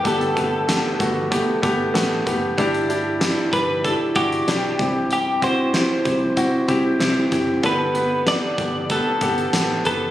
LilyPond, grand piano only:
<<
  \new Staff \with { instrumentName = "Grand piano" } { \time 4/4 \key g \major \tempo 4 = 95 <a b g'>8 <a b g'>8 <a b g'>8 <a b fis'>8 <a b g'>8 <a b g'>8 <a b g'>8 <a b g'>8 | <d' e' g'>8 <d' e' g'>8 <d' e' g'>8 <d' e' g'>8 <d' e' g'>8 <d' e' fis'>8 <d' e' g'>8 <c' e' g'>8~ | <c' e' g'>8 <c' e' fis'>8 <c' e' g'>8 <c' e' g'>8 <c' e' fis'>8 <c' e' g'>8 <c' e' g'>8 <c' e' g'>8 | <b g' a'>8 <b g' b'>8 <b g' a'>8 <b g' a'>8 <b g' b'>8 <b g' a'>8 <b g' a'>8 <b g' b'>8 | }
  \new Staff \with { instrumentName = "Grand piano" } { \clef bass \time 4/4 \key g \major <g, d>4. r2 r8 | <g, g>4. r2 g,8~ | g,4 r2. | <g, d>4. r2 r8 | }
>>